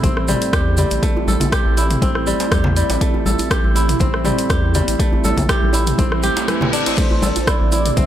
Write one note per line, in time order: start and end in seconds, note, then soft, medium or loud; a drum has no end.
0.00 0.35 A1 medium
0.00 0.27 G3 medium
0.00 1.02 A3 loud
0.00 8.06 A3 medium
0.00 8.06 C4 medium
0.00 1.83 C4 loud
0.00 1.36 E4 medium
0.00 6.97 E4 medium
0.00 0.53 G4 loud
0.00 0.61 A4 medium
0.00 kick loud
0.00 closed hi-hat medium
0.00 low conga medium
0.04 high conga loud
0.04 shaker soft
0.17 cross-stick medium
0.28 0.77 G3 medium
0.28 mid tom loud
0.28 djembe slap medium
0.28 high conga medium
0.28 shaker medium
0.42 closed hi-hat soft
0.42 shaker soft
0.53 0.85 E2 medium
0.53 1.52 G4 medium
0.53 kick loud
0.53 cross-stick loud
0.53 closed hi-hat soft
0.53 shaker soft
0.77 2.26 G3 medium
0.77 closed hi-hat soft
0.77 low conga medium
0.77 shaker medium
0.91 0.99 A1 medium
0.91 closed hi-hat soft
0.91 shaker soft
1.03 3.01 A3 loud
1.03 kick loud
1.03 closed hi-hat medium
1.03 high conga medium
1.03 shaker soft
1.16 djembe tone medium
1.16 djembe bass loud
1.27 1.37 A1 loud
1.27 2.59 A4 medium
1.27 djembe slap medium
1.27 djembe tone medium
1.27 high conga medium
1.27 shaker medium
1.40 closed hi-hat soft
1.40 low conga loud
1.40 djembe bass medium
1.40 shaker soft
1.52 2.51 G4 loud
1.52 kick loud
1.52 cross-stick loud
1.52 closed hi-hat medium
1.52 shaker soft
1.65 1.96 A1 loud
1.77 3.34 E4 medium
1.77 closed hi-hat soft
1.77 djembe tone medium
1.77 shaker loud
1.90 closed hi-hat soft
1.90 mid tom medium
1.90 shaker soft
2.02 2.34 A1 medium
2.02 3.82 C4 medium
2.02 kick loud
2.02 closed hi-hat medium
2.02 high conga medium
2.02 shaker soft
2.15 cross-stick medium
2.27 2.75 G3 medium
2.27 high conga medium
2.27 shaker medium
2.40 closed hi-hat soft
2.40 djembe slap medium
2.40 shaker soft
2.52 2.83 E2 medium
2.52 3.50 G4 loud
2.52 kick loud
2.52 cross-stick loud
2.52 closed hi-hat medium
2.52 high conga medium
2.52 shaker soft
2.64 mid tom medium
2.64 djembe slap loud
2.64 low conga loud
2.76 4.24 G3 medium
2.76 closed hi-hat soft
2.76 shaker medium
2.90 2.98 A1 medium
2.90 closed hi-hat soft
2.90 djembe slap medium
2.90 shaker soft
3.01 4.99 A3 loud
3.01 kick loud
3.01 closed hi-hat medium
3.01 high conga medium
3.01 shaker soft
3.14 djembe tone medium
3.14 djembe bass loud
3.26 3.35 A1 loud
3.26 4.57 A4 medium
3.26 djembe slap medium
3.26 djembe tone medium
3.26 high conga medium
3.26 shaker medium
3.39 closed hi-hat soft
3.39 djembe bass medium
3.39 shaker medium
3.51 4.49 G4 loud
3.51 kick loud
3.51 cross-stick loud
3.51 closed hi-hat medium
3.51 shaker soft
3.64 3.95 A1 loud
3.64 high conga medium
3.75 5.32 E4 medium
3.75 closed hi-hat soft
3.75 djembe tone medium
3.75 shaker medium
3.89 closed hi-hat soft
3.89 mid tom medium
3.89 shaker soft
4.00 4.32 A1 medium
4.00 5.80 C4 loud
4.00 kick loud
4.00 closed hi-hat medium
4.00 high conga medium
4.00 low conga medium
4.00 shaker soft
4.14 cross-stick medium
4.24 4.74 G3 medium
4.24 mid tom loud
4.24 djembe slap medium
4.24 high conga medium
4.24 shaker medium
4.38 closed hi-hat soft
4.38 shaker soft
4.49 4.82 E2 medium
4.49 5.49 G4 medium
4.49 kick loud
4.49 cross-stick medium
4.49 closed hi-hat medium
4.49 shaker soft
4.74 7.09 G3 medium
4.74 closed hi-hat soft
4.74 low conga medium
4.74 shaker medium
4.88 4.96 A1 medium
4.88 closed hi-hat medium
4.88 shaker medium
4.99 6.97 A3 medium
4.99 kick loud
4.99 closed hi-hat medium
4.99 high conga medium
4.99 shaker soft
5.13 djembe tone medium
5.13 djembe bass medium
5.24 5.33 A1 loud
5.24 6.56 A4 medium
5.24 djembe slap medium
5.24 djembe tone medium
5.24 high conga medium
5.24 shaker medium
5.37 kick medium
5.37 closed hi-hat soft
5.37 djembe bass loud
5.37 low conga loud
5.37 shaker medium
5.49 6.23 G4 loud
5.49 kick loud
5.49 cross-stick loud
5.49 closed hi-hat medium
5.49 shaker soft
5.62 5.93 A1 loud
5.62 high conga medium
5.73 7.31 E4 medium
5.73 closed hi-hat soft
5.73 djembe tone loud
5.73 shaker medium
5.87 closed hi-hat soft
5.87 mid tom medium
5.87 shaker soft
5.98 6.30 A1 medium
5.98 6.86 C4 medium
5.98 kick loud
5.98 closed hi-hat medium
5.98 reverse cymbal medium
5.98 high conga loud
5.98 shaker soft
6.12 cross-stick medium
6.23 7.65 G4 loud
6.23 closed hi-hat soft
6.23 high conga medium
6.23 shaker medium
6.37 closed hi-hat soft
6.37 djembe slap loud
6.37 shaker soft
6.48 8.06 E3 loud
6.48 cross-stick medium
6.48 closed hi-hat medium
6.48 high conga medium
6.48 shaker soft
6.61 mid tom medium
6.61 djembe slap loud
6.61 low conga loud
6.73 8.06 D4 loud
6.73 closed hi-hat soft
6.73 shaker medium
6.86 7.96 C4 medium
6.86 closed hi-hat medium
6.86 djembe slap medium
6.86 shaker medium
6.98 8.06 A3 loud
6.98 8.06 G4 medium
6.98 7.49 C5 loud
6.98 kick loud
6.98 closed hi-hat medium
6.98 crash medium
6.98 high conga medium
6.98 shaker soft
7.11 djembe tone medium
7.11 djembe bass loud
7.22 7.32 A1 loud
7.22 8.06 A4 medium
7.22 djembe slap medium
7.22 high conga loud
7.22 djembe tone medium
7.22 shaker medium
7.36 closed hi-hat soft
7.36 djembe bass medium
7.36 shaker medium
7.47 7.72 E4 medium
7.47 7.99 D5 loud
7.47 kick loud
7.47 cross-stick loud
7.47 closed hi-hat medium
7.47 shaker soft
7.60 7.91 A1 loud
7.60 high conga medium
7.72 8.06 E4 medium
7.72 closed hi-hat soft
7.72 djembe tone medium
7.72 shaker medium
7.86 closed hi-hat soft
7.86 mid tom medium
7.86 shaker soft
7.97 8.06 A1 medium
7.97 8.06 C4 loud
7.97 8.06 E5 loud
7.97 kick loud
7.97 closed hi-hat medium
7.97 high conga loud
7.97 low conga medium
7.97 shaker soft